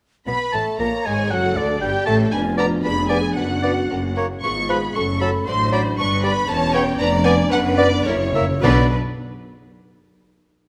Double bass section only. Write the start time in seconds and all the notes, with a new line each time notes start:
0.28 B1
0.54 A1
0.80 A#1
1.07 G#1
1.32 F#1
1.57 D2
1.82 G1
2.07 A1
2.33 F1
2.84 F1
3.37 F#1
3.90 F#1
4.44 G#1
4.95 F#1
5.47 A1
5.98 G1
6.49 E1
7.00 F1
7.52 F#1
8.06 F#1
8.64 B1